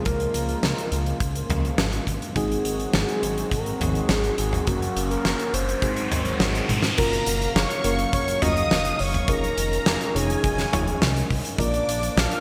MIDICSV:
0, 0, Header, 1, 8, 480
1, 0, Start_track
1, 0, Key_signature, -5, "major"
1, 0, Tempo, 576923
1, 45, Time_signature, 4, 2, 24, 8
1, 10318, End_track
2, 0, Start_track
2, 0, Title_t, "String machine"
2, 0, Program_c, 0, 50
2, 5806, Note_on_c, 0, 82, 108
2, 6252, Note_off_c, 0, 82, 0
2, 6287, Note_on_c, 0, 85, 105
2, 6733, Note_off_c, 0, 85, 0
2, 6767, Note_on_c, 0, 85, 108
2, 6989, Note_off_c, 0, 85, 0
2, 7006, Note_on_c, 0, 87, 114
2, 7452, Note_off_c, 0, 87, 0
2, 7487, Note_on_c, 0, 85, 105
2, 7709, Note_off_c, 0, 85, 0
2, 7727, Note_on_c, 0, 82, 115
2, 8413, Note_off_c, 0, 82, 0
2, 8447, Note_on_c, 0, 80, 96
2, 9373, Note_off_c, 0, 80, 0
2, 9649, Note_on_c, 0, 86, 104
2, 10094, Note_off_c, 0, 86, 0
2, 10128, Note_on_c, 0, 89, 100
2, 10318, Note_off_c, 0, 89, 0
2, 10318, End_track
3, 0, Start_track
3, 0, Title_t, "Soft synth lead"
3, 0, Program_c, 1, 80
3, 45, Note_on_c, 1, 70, 102
3, 1452, Note_off_c, 1, 70, 0
3, 1968, Note_on_c, 1, 68, 105
3, 2928, Note_on_c, 1, 70, 99
3, 2941, Note_off_c, 1, 68, 0
3, 3167, Note_on_c, 1, 68, 102
3, 3180, Note_off_c, 1, 70, 0
3, 3640, Note_off_c, 1, 68, 0
3, 3645, Note_on_c, 1, 68, 95
3, 3887, Note_on_c, 1, 66, 107
3, 3899, Note_off_c, 1, 68, 0
3, 4243, Note_off_c, 1, 66, 0
3, 4248, Note_on_c, 1, 70, 111
3, 4607, Note_on_c, 1, 72, 110
3, 4619, Note_off_c, 1, 70, 0
3, 5566, Note_off_c, 1, 72, 0
3, 5809, Note_on_c, 1, 70, 104
3, 6254, Note_off_c, 1, 70, 0
3, 6287, Note_on_c, 1, 73, 103
3, 6733, Note_off_c, 1, 73, 0
3, 6767, Note_on_c, 1, 73, 108
3, 6989, Note_off_c, 1, 73, 0
3, 7006, Note_on_c, 1, 75, 113
3, 7488, Note_on_c, 1, 73, 104
3, 7501, Note_off_c, 1, 75, 0
3, 7728, Note_on_c, 1, 70, 110
3, 7740, Note_off_c, 1, 73, 0
3, 8449, Note_on_c, 1, 68, 94
3, 8462, Note_off_c, 1, 70, 0
3, 9407, Note_off_c, 1, 68, 0
3, 9651, Note_on_c, 1, 74, 108
3, 10130, Note_on_c, 1, 77, 114
3, 10143, Note_off_c, 1, 74, 0
3, 10318, Note_off_c, 1, 77, 0
3, 10318, End_track
4, 0, Start_track
4, 0, Title_t, "FM electric piano"
4, 0, Program_c, 2, 5
4, 0, Note_on_c, 2, 56, 89
4, 0, Note_on_c, 2, 58, 83
4, 0, Note_on_c, 2, 61, 80
4, 0, Note_on_c, 2, 65, 86
4, 0, Note_on_c, 2, 68, 95
4, 1916, Note_off_c, 2, 58, 0
4, 1916, Note_off_c, 2, 61, 0
4, 1917, Note_off_c, 2, 56, 0
4, 1917, Note_off_c, 2, 65, 0
4, 1917, Note_off_c, 2, 68, 0
4, 1965, Note_on_c, 2, 56, 96
4, 1965, Note_on_c, 2, 60, 88
4, 1965, Note_on_c, 2, 63, 85
4, 1965, Note_on_c, 2, 66, 81
4, 1966, Note_on_c, 2, 68, 103
4, 3837, Note_off_c, 2, 56, 0
4, 3837, Note_off_c, 2, 60, 0
4, 3837, Note_off_c, 2, 63, 0
4, 3837, Note_off_c, 2, 66, 0
4, 3837, Note_off_c, 2, 68, 0
4, 3885, Note_on_c, 2, 58, 72
4, 3885, Note_on_c, 2, 66, 73
4, 3886, Note_on_c, 2, 54, 82
4, 3886, Note_on_c, 2, 61, 70
4, 3886, Note_on_c, 2, 70, 85
4, 4797, Note_off_c, 2, 54, 0
4, 4797, Note_off_c, 2, 58, 0
4, 4797, Note_off_c, 2, 61, 0
4, 4797, Note_off_c, 2, 66, 0
4, 4797, Note_off_c, 2, 70, 0
4, 4845, Note_on_c, 2, 56, 82
4, 4845, Note_on_c, 2, 60, 77
4, 4845, Note_on_c, 2, 63, 75
4, 4846, Note_on_c, 2, 66, 74
4, 4846, Note_on_c, 2, 68, 90
4, 5757, Note_off_c, 2, 56, 0
4, 5757, Note_off_c, 2, 60, 0
4, 5757, Note_off_c, 2, 63, 0
4, 5757, Note_off_c, 2, 66, 0
4, 5757, Note_off_c, 2, 68, 0
4, 5806, Note_on_c, 2, 58, 91
4, 5806, Note_on_c, 2, 61, 90
4, 5806, Note_on_c, 2, 65, 88
4, 5806, Note_on_c, 2, 66, 82
4, 5806, Note_on_c, 2, 70, 102
4, 6497, Note_off_c, 2, 58, 0
4, 6497, Note_off_c, 2, 61, 0
4, 6497, Note_off_c, 2, 65, 0
4, 6497, Note_off_c, 2, 66, 0
4, 6497, Note_off_c, 2, 70, 0
4, 6525, Note_on_c, 2, 58, 90
4, 6525, Note_on_c, 2, 65, 79
4, 6525, Note_on_c, 2, 66, 80
4, 6526, Note_on_c, 2, 61, 81
4, 6526, Note_on_c, 2, 70, 99
4, 6976, Note_off_c, 2, 58, 0
4, 6976, Note_off_c, 2, 61, 0
4, 6976, Note_off_c, 2, 65, 0
4, 6976, Note_off_c, 2, 66, 0
4, 6977, Note_off_c, 2, 70, 0
4, 7006, Note_on_c, 2, 58, 103
4, 7006, Note_on_c, 2, 61, 96
4, 7006, Note_on_c, 2, 70, 112
4, 7007, Note_on_c, 2, 65, 90
4, 7007, Note_on_c, 2, 66, 92
4, 7106, Note_off_c, 2, 58, 0
4, 7106, Note_off_c, 2, 61, 0
4, 7106, Note_off_c, 2, 65, 0
4, 7106, Note_off_c, 2, 66, 0
4, 7106, Note_off_c, 2, 70, 0
4, 7725, Note_on_c, 2, 65, 86
4, 7726, Note_on_c, 2, 61, 95
4, 7726, Note_on_c, 2, 63, 83
4, 7726, Note_on_c, 2, 68, 87
4, 7726, Note_on_c, 2, 73, 99
4, 8416, Note_off_c, 2, 65, 0
4, 8417, Note_off_c, 2, 61, 0
4, 8417, Note_off_c, 2, 63, 0
4, 8417, Note_off_c, 2, 68, 0
4, 8417, Note_off_c, 2, 73, 0
4, 8445, Note_on_c, 2, 61, 92
4, 8445, Note_on_c, 2, 63, 83
4, 8445, Note_on_c, 2, 65, 85
4, 8445, Note_on_c, 2, 73, 98
4, 8446, Note_on_c, 2, 68, 81
4, 8896, Note_off_c, 2, 61, 0
4, 8896, Note_off_c, 2, 63, 0
4, 8896, Note_off_c, 2, 65, 0
4, 8896, Note_off_c, 2, 73, 0
4, 8897, Note_off_c, 2, 68, 0
4, 8925, Note_on_c, 2, 61, 100
4, 8925, Note_on_c, 2, 63, 89
4, 8925, Note_on_c, 2, 65, 87
4, 8925, Note_on_c, 2, 68, 92
4, 8926, Note_on_c, 2, 73, 114
4, 9025, Note_off_c, 2, 61, 0
4, 9026, Note_off_c, 2, 63, 0
4, 9026, Note_off_c, 2, 65, 0
4, 9026, Note_off_c, 2, 68, 0
4, 9026, Note_off_c, 2, 73, 0
4, 9644, Note_on_c, 2, 62, 86
4, 9644, Note_on_c, 2, 65, 87
4, 9645, Note_on_c, 2, 58, 93
4, 9645, Note_on_c, 2, 70, 88
4, 9645, Note_on_c, 2, 74, 104
4, 10318, Note_off_c, 2, 58, 0
4, 10318, Note_off_c, 2, 62, 0
4, 10318, Note_off_c, 2, 65, 0
4, 10318, Note_off_c, 2, 70, 0
4, 10318, Note_off_c, 2, 74, 0
4, 10318, End_track
5, 0, Start_track
5, 0, Title_t, "Analog synth pad"
5, 0, Program_c, 3, 89
5, 0, Note_on_c, 3, 49, 81
5, 0, Note_on_c, 3, 53, 79
5, 0, Note_on_c, 3, 56, 75
5, 0, Note_on_c, 3, 58, 75
5, 0, Note_on_c, 3, 65, 91
5, 1930, Note_off_c, 3, 53, 0
5, 1931, Note_off_c, 3, 49, 0
5, 1931, Note_off_c, 3, 56, 0
5, 1931, Note_off_c, 3, 58, 0
5, 1931, Note_off_c, 3, 65, 0
5, 1963, Note_on_c, 3, 54, 77
5, 1963, Note_on_c, 3, 56, 76
5, 1963, Note_on_c, 3, 60, 76
5, 1963, Note_on_c, 3, 66, 90
5, 1964, Note_on_c, 3, 51, 83
5, 3865, Note_off_c, 3, 51, 0
5, 3865, Note_off_c, 3, 54, 0
5, 3865, Note_off_c, 3, 56, 0
5, 3865, Note_off_c, 3, 60, 0
5, 3885, Note_on_c, 3, 58, 80
5, 3886, Note_on_c, 3, 61, 74
5, 4815, Note_off_c, 3, 66, 0
5, 4835, Note_off_c, 3, 58, 0
5, 4836, Note_off_c, 3, 61, 0
5, 4845, Note_on_c, 3, 60, 75
5, 4846, Note_on_c, 3, 51, 77
5, 4846, Note_on_c, 3, 54, 72
5, 4846, Note_on_c, 3, 56, 76
5, 4847, Note_on_c, 3, 66, 85
5, 5791, Note_off_c, 3, 54, 0
5, 5796, Note_off_c, 3, 51, 0
5, 5796, Note_off_c, 3, 56, 0
5, 5796, Note_off_c, 3, 60, 0
5, 5796, Note_off_c, 3, 66, 0
5, 5801, Note_on_c, 3, 54, 77
5, 5801, Note_on_c, 3, 77, 91
5, 5802, Note_on_c, 3, 49, 86
5, 5802, Note_on_c, 3, 58, 74
5, 7704, Note_off_c, 3, 49, 0
5, 7704, Note_off_c, 3, 54, 0
5, 7704, Note_off_c, 3, 58, 0
5, 7722, Note_on_c, 3, 56, 79
5, 7722, Note_on_c, 3, 61, 77
5, 7724, Note_on_c, 3, 51, 82
5, 9610, Note_off_c, 3, 77, 0
5, 9624, Note_off_c, 3, 56, 0
5, 9625, Note_off_c, 3, 51, 0
5, 9625, Note_off_c, 3, 61, 0
5, 9643, Note_on_c, 3, 62, 93
5, 9645, Note_on_c, 3, 53, 86
5, 9645, Note_on_c, 3, 58, 78
5, 10318, Note_off_c, 3, 53, 0
5, 10318, Note_off_c, 3, 58, 0
5, 10318, Note_off_c, 3, 62, 0
5, 10318, End_track
6, 0, Start_track
6, 0, Title_t, "Analog synth bass"
6, 0, Program_c, 4, 38
6, 50, Note_on_c, 4, 37, 103
6, 226, Note_off_c, 4, 37, 0
6, 283, Note_on_c, 4, 37, 102
6, 462, Note_off_c, 4, 37, 0
6, 523, Note_on_c, 4, 37, 98
6, 613, Note_off_c, 4, 37, 0
6, 763, Note_on_c, 4, 37, 96
6, 942, Note_off_c, 4, 37, 0
6, 1001, Note_on_c, 4, 37, 76
6, 1181, Note_off_c, 4, 37, 0
6, 1243, Note_on_c, 4, 37, 100
6, 1422, Note_off_c, 4, 37, 0
6, 1484, Note_on_c, 4, 32, 78
6, 1663, Note_off_c, 4, 32, 0
6, 1723, Note_on_c, 4, 32, 87
6, 1813, Note_off_c, 4, 32, 0
6, 1962, Note_on_c, 4, 32, 99
6, 2142, Note_off_c, 4, 32, 0
6, 2203, Note_on_c, 4, 32, 98
6, 2382, Note_off_c, 4, 32, 0
6, 2443, Note_on_c, 4, 32, 93
6, 2533, Note_off_c, 4, 32, 0
6, 2684, Note_on_c, 4, 32, 81
6, 2863, Note_off_c, 4, 32, 0
6, 2924, Note_on_c, 4, 32, 99
6, 3103, Note_off_c, 4, 32, 0
6, 3164, Note_on_c, 4, 32, 90
6, 3343, Note_off_c, 4, 32, 0
6, 3405, Note_on_c, 4, 32, 94
6, 3584, Note_off_c, 4, 32, 0
6, 3645, Note_on_c, 4, 32, 102
6, 3823, Note_off_c, 4, 32, 0
6, 3889, Note_on_c, 4, 30, 98
6, 4065, Note_off_c, 4, 30, 0
6, 4123, Note_on_c, 4, 30, 98
6, 4302, Note_off_c, 4, 30, 0
6, 4364, Note_on_c, 4, 30, 99
6, 4454, Note_off_c, 4, 30, 0
6, 4604, Note_on_c, 4, 30, 99
6, 4783, Note_off_c, 4, 30, 0
6, 4844, Note_on_c, 4, 32, 85
6, 5023, Note_off_c, 4, 32, 0
6, 5084, Note_on_c, 4, 32, 97
6, 5263, Note_off_c, 4, 32, 0
6, 5323, Note_on_c, 4, 32, 75
6, 5503, Note_off_c, 4, 32, 0
6, 5568, Note_on_c, 4, 44, 103
6, 5745, Note_off_c, 4, 44, 0
6, 5810, Note_on_c, 4, 30, 94
6, 5986, Note_off_c, 4, 30, 0
6, 6045, Note_on_c, 4, 30, 102
6, 6223, Note_off_c, 4, 30, 0
6, 6284, Note_on_c, 4, 30, 89
6, 6374, Note_off_c, 4, 30, 0
6, 6526, Note_on_c, 4, 30, 84
6, 6704, Note_off_c, 4, 30, 0
6, 6766, Note_on_c, 4, 30, 104
6, 6944, Note_off_c, 4, 30, 0
6, 7006, Note_on_c, 4, 30, 88
6, 7184, Note_off_c, 4, 30, 0
6, 7246, Note_on_c, 4, 30, 93
6, 7424, Note_off_c, 4, 30, 0
6, 7487, Note_on_c, 4, 30, 99
6, 7664, Note_off_c, 4, 30, 0
6, 7722, Note_on_c, 4, 29, 104
6, 7902, Note_off_c, 4, 29, 0
6, 7967, Note_on_c, 4, 29, 96
6, 8144, Note_off_c, 4, 29, 0
6, 8206, Note_on_c, 4, 29, 95
6, 8295, Note_off_c, 4, 29, 0
6, 8446, Note_on_c, 4, 29, 100
6, 8624, Note_off_c, 4, 29, 0
6, 8685, Note_on_c, 4, 29, 82
6, 8864, Note_off_c, 4, 29, 0
6, 8925, Note_on_c, 4, 29, 102
6, 9103, Note_off_c, 4, 29, 0
6, 9165, Note_on_c, 4, 36, 84
6, 9343, Note_off_c, 4, 36, 0
6, 9405, Note_on_c, 4, 36, 90
6, 9494, Note_off_c, 4, 36, 0
6, 9639, Note_on_c, 4, 34, 94
6, 9820, Note_off_c, 4, 34, 0
6, 9883, Note_on_c, 4, 34, 103
6, 10062, Note_off_c, 4, 34, 0
6, 10123, Note_on_c, 4, 34, 93
6, 10213, Note_off_c, 4, 34, 0
6, 10318, End_track
7, 0, Start_track
7, 0, Title_t, "Riser"
7, 0, Program_c, 5, 103
7, 1965, Note_on_c, 5, 60, 75
7, 5805, Note_off_c, 5, 60, 0
7, 10318, End_track
8, 0, Start_track
8, 0, Title_t, "Drums"
8, 44, Note_on_c, 9, 42, 73
8, 50, Note_on_c, 9, 36, 106
8, 127, Note_off_c, 9, 42, 0
8, 133, Note_off_c, 9, 36, 0
8, 166, Note_on_c, 9, 42, 45
8, 249, Note_off_c, 9, 42, 0
8, 285, Note_on_c, 9, 42, 85
8, 368, Note_off_c, 9, 42, 0
8, 405, Note_on_c, 9, 42, 46
8, 488, Note_off_c, 9, 42, 0
8, 525, Note_on_c, 9, 38, 100
8, 525, Note_on_c, 9, 42, 70
8, 608, Note_off_c, 9, 38, 0
8, 608, Note_off_c, 9, 42, 0
8, 652, Note_on_c, 9, 42, 49
8, 735, Note_off_c, 9, 42, 0
8, 764, Note_on_c, 9, 42, 86
8, 847, Note_off_c, 9, 42, 0
8, 885, Note_on_c, 9, 42, 52
8, 968, Note_off_c, 9, 42, 0
8, 1002, Note_on_c, 9, 36, 107
8, 1006, Note_on_c, 9, 42, 64
8, 1085, Note_off_c, 9, 36, 0
8, 1089, Note_off_c, 9, 42, 0
8, 1127, Note_on_c, 9, 42, 53
8, 1210, Note_off_c, 9, 42, 0
8, 1246, Note_on_c, 9, 42, 81
8, 1251, Note_on_c, 9, 45, 89
8, 1329, Note_off_c, 9, 42, 0
8, 1334, Note_off_c, 9, 45, 0
8, 1371, Note_on_c, 9, 42, 54
8, 1455, Note_off_c, 9, 42, 0
8, 1482, Note_on_c, 9, 38, 122
8, 1485, Note_on_c, 9, 42, 66
8, 1565, Note_off_c, 9, 38, 0
8, 1568, Note_off_c, 9, 42, 0
8, 1601, Note_on_c, 9, 42, 51
8, 1684, Note_off_c, 9, 42, 0
8, 1722, Note_on_c, 9, 36, 64
8, 1727, Note_on_c, 9, 42, 86
8, 1805, Note_off_c, 9, 36, 0
8, 1810, Note_off_c, 9, 42, 0
8, 1848, Note_on_c, 9, 42, 52
8, 1931, Note_off_c, 9, 42, 0
8, 1962, Note_on_c, 9, 36, 100
8, 1965, Note_on_c, 9, 42, 77
8, 2045, Note_off_c, 9, 36, 0
8, 2048, Note_off_c, 9, 42, 0
8, 2093, Note_on_c, 9, 42, 46
8, 2176, Note_off_c, 9, 42, 0
8, 2205, Note_on_c, 9, 42, 87
8, 2288, Note_off_c, 9, 42, 0
8, 2326, Note_on_c, 9, 42, 46
8, 2410, Note_off_c, 9, 42, 0
8, 2442, Note_on_c, 9, 38, 116
8, 2443, Note_on_c, 9, 42, 72
8, 2525, Note_off_c, 9, 38, 0
8, 2526, Note_off_c, 9, 42, 0
8, 2567, Note_on_c, 9, 42, 46
8, 2650, Note_off_c, 9, 42, 0
8, 2688, Note_on_c, 9, 42, 92
8, 2771, Note_off_c, 9, 42, 0
8, 2809, Note_on_c, 9, 42, 57
8, 2892, Note_off_c, 9, 42, 0
8, 2924, Note_on_c, 9, 36, 104
8, 2928, Note_on_c, 9, 42, 75
8, 3007, Note_off_c, 9, 36, 0
8, 3011, Note_off_c, 9, 42, 0
8, 3047, Note_on_c, 9, 42, 49
8, 3130, Note_off_c, 9, 42, 0
8, 3169, Note_on_c, 9, 42, 84
8, 3174, Note_on_c, 9, 45, 82
8, 3252, Note_off_c, 9, 42, 0
8, 3257, Note_off_c, 9, 45, 0
8, 3287, Note_on_c, 9, 42, 47
8, 3371, Note_off_c, 9, 42, 0
8, 3402, Note_on_c, 9, 38, 109
8, 3405, Note_on_c, 9, 42, 68
8, 3485, Note_off_c, 9, 38, 0
8, 3488, Note_off_c, 9, 42, 0
8, 3526, Note_on_c, 9, 42, 50
8, 3609, Note_off_c, 9, 42, 0
8, 3645, Note_on_c, 9, 42, 96
8, 3728, Note_off_c, 9, 42, 0
8, 3767, Note_on_c, 9, 45, 63
8, 3777, Note_on_c, 9, 42, 52
8, 3850, Note_off_c, 9, 45, 0
8, 3860, Note_off_c, 9, 42, 0
8, 3884, Note_on_c, 9, 42, 77
8, 3889, Note_on_c, 9, 36, 101
8, 3968, Note_off_c, 9, 42, 0
8, 3972, Note_off_c, 9, 36, 0
8, 4013, Note_on_c, 9, 42, 52
8, 4096, Note_off_c, 9, 42, 0
8, 4131, Note_on_c, 9, 42, 94
8, 4215, Note_off_c, 9, 42, 0
8, 4253, Note_on_c, 9, 42, 50
8, 4336, Note_off_c, 9, 42, 0
8, 4368, Note_on_c, 9, 38, 98
8, 4369, Note_on_c, 9, 42, 69
8, 4451, Note_off_c, 9, 38, 0
8, 4452, Note_off_c, 9, 42, 0
8, 4488, Note_on_c, 9, 42, 49
8, 4571, Note_off_c, 9, 42, 0
8, 4608, Note_on_c, 9, 42, 103
8, 4691, Note_off_c, 9, 42, 0
8, 4731, Note_on_c, 9, 42, 53
8, 4815, Note_off_c, 9, 42, 0
8, 4844, Note_on_c, 9, 36, 107
8, 4849, Note_on_c, 9, 42, 70
8, 4927, Note_off_c, 9, 36, 0
8, 4932, Note_off_c, 9, 42, 0
8, 4962, Note_on_c, 9, 42, 53
8, 5045, Note_off_c, 9, 42, 0
8, 5089, Note_on_c, 9, 42, 89
8, 5089, Note_on_c, 9, 45, 81
8, 5172, Note_off_c, 9, 42, 0
8, 5172, Note_off_c, 9, 45, 0
8, 5200, Note_on_c, 9, 42, 54
8, 5283, Note_off_c, 9, 42, 0
8, 5325, Note_on_c, 9, 38, 118
8, 5333, Note_on_c, 9, 42, 75
8, 5408, Note_off_c, 9, 38, 0
8, 5416, Note_off_c, 9, 42, 0
8, 5450, Note_on_c, 9, 42, 61
8, 5533, Note_off_c, 9, 42, 0
8, 5568, Note_on_c, 9, 36, 59
8, 5570, Note_on_c, 9, 42, 100
8, 5577, Note_on_c, 9, 48, 61
8, 5651, Note_off_c, 9, 36, 0
8, 5653, Note_off_c, 9, 42, 0
8, 5660, Note_off_c, 9, 48, 0
8, 5678, Note_on_c, 9, 38, 71
8, 5684, Note_on_c, 9, 42, 58
8, 5761, Note_off_c, 9, 38, 0
8, 5767, Note_off_c, 9, 42, 0
8, 5805, Note_on_c, 9, 49, 100
8, 5807, Note_on_c, 9, 42, 82
8, 5811, Note_on_c, 9, 36, 112
8, 5888, Note_off_c, 9, 49, 0
8, 5890, Note_off_c, 9, 42, 0
8, 5894, Note_off_c, 9, 36, 0
8, 5932, Note_on_c, 9, 42, 53
8, 6016, Note_off_c, 9, 42, 0
8, 6044, Note_on_c, 9, 42, 108
8, 6127, Note_off_c, 9, 42, 0
8, 6170, Note_on_c, 9, 42, 55
8, 6254, Note_off_c, 9, 42, 0
8, 6290, Note_on_c, 9, 38, 120
8, 6291, Note_on_c, 9, 42, 73
8, 6373, Note_off_c, 9, 38, 0
8, 6374, Note_off_c, 9, 42, 0
8, 6411, Note_on_c, 9, 42, 52
8, 6494, Note_off_c, 9, 42, 0
8, 6525, Note_on_c, 9, 42, 102
8, 6608, Note_off_c, 9, 42, 0
8, 6646, Note_on_c, 9, 42, 54
8, 6729, Note_off_c, 9, 42, 0
8, 6765, Note_on_c, 9, 36, 109
8, 6768, Note_on_c, 9, 42, 76
8, 6848, Note_off_c, 9, 36, 0
8, 6851, Note_off_c, 9, 42, 0
8, 6888, Note_on_c, 9, 42, 58
8, 6972, Note_off_c, 9, 42, 0
8, 7006, Note_on_c, 9, 45, 96
8, 7009, Note_on_c, 9, 42, 95
8, 7089, Note_off_c, 9, 45, 0
8, 7092, Note_off_c, 9, 42, 0
8, 7126, Note_on_c, 9, 42, 58
8, 7209, Note_off_c, 9, 42, 0
8, 7248, Note_on_c, 9, 38, 112
8, 7248, Note_on_c, 9, 42, 80
8, 7331, Note_off_c, 9, 42, 0
8, 7332, Note_off_c, 9, 38, 0
8, 7363, Note_on_c, 9, 42, 60
8, 7446, Note_off_c, 9, 42, 0
8, 7480, Note_on_c, 9, 46, 94
8, 7564, Note_off_c, 9, 46, 0
8, 7607, Note_on_c, 9, 45, 61
8, 7610, Note_on_c, 9, 42, 56
8, 7690, Note_off_c, 9, 45, 0
8, 7693, Note_off_c, 9, 42, 0
8, 7721, Note_on_c, 9, 36, 127
8, 7725, Note_on_c, 9, 42, 77
8, 7804, Note_off_c, 9, 36, 0
8, 7808, Note_off_c, 9, 42, 0
8, 7853, Note_on_c, 9, 42, 52
8, 7936, Note_off_c, 9, 42, 0
8, 7967, Note_on_c, 9, 42, 98
8, 8050, Note_off_c, 9, 42, 0
8, 8095, Note_on_c, 9, 42, 52
8, 8178, Note_off_c, 9, 42, 0
8, 8205, Note_on_c, 9, 38, 123
8, 8208, Note_on_c, 9, 42, 83
8, 8289, Note_off_c, 9, 38, 0
8, 8292, Note_off_c, 9, 42, 0
8, 8326, Note_on_c, 9, 42, 53
8, 8409, Note_off_c, 9, 42, 0
8, 8453, Note_on_c, 9, 42, 107
8, 8536, Note_off_c, 9, 42, 0
8, 8569, Note_on_c, 9, 42, 60
8, 8653, Note_off_c, 9, 42, 0
8, 8685, Note_on_c, 9, 36, 116
8, 8686, Note_on_c, 9, 42, 84
8, 8769, Note_off_c, 9, 36, 0
8, 8769, Note_off_c, 9, 42, 0
8, 8804, Note_on_c, 9, 38, 37
8, 8806, Note_on_c, 9, 42, 54
8, 8887, Note_off_c, 9, 38, 0
8, 8889, Note_off_c, 9, 42, 0
8, 8929, Note_on_c, 9, 45, 87
8, 8931, Note_on_c, 9, 42, 89
8, 9013, Note_off_c, 9, 45, 0
8, 9015, Note_off_c, 9, 42, 0
8, 9048, Note_on_c, 9, 42, 55
8, 9131, Note_off_c, 9, 42, 0
8, 9167, Note_on_c, 9, 38, 113
8, 9174, Note_on_c, 9, 42, 72
8, 9251, Note_off_c, 9, 38, 0
8, 9257, Note_off_c, 9, 42, 0
8, 9290, Note_on_c, 9, 42, 58
8, 9373, Note_off_c, 9, 42, 0
8, 9406, Note_on_c, 9, 36, 66
8, 9409, Note_on_c, 9, 46, 77
8, 9489, Note_off_c, 9, 36, 0
8, 9493, Note_off_c, 9, 46, 0
8, 9524, Note_on_c, 9, 42, 58
8, 9607, Note_off_c, 9, 42, 0
8, 9638, Note_on_c, 9, 36, 112
8, 9650, Note_on_c, 9, 42, 79
8, 9722, Note_off_c, 9, 36, 0
8, 9734, Note_off_c, 9, 42, 0
8, 9765, Note_on_c, 9, 42, 50
8, 9849, Note_off_c, 9, 42, 0
8, 9891, Note_on_c, 9, 42, 102
8, 9974, Note_off_c, 9, 42, 0
8, 10009, Note_on_c, 9, 42, 61
8, 10092, Note_off_c, 9, 42, 0
8, 10130, Note_on_c, 9, 38, 120
8, 10134, Note_on_c, 9, 42, 83
8, 10213, Note_off_c, 9, 38, 0
8, 10217, Note_off_c, 9, 42, 0
8, 10244, Note_on_c, 9, 42, 51
8, 10318, Note_off_c, 9, 42, 0
8, 10318, End_track
0, 0, End_of_file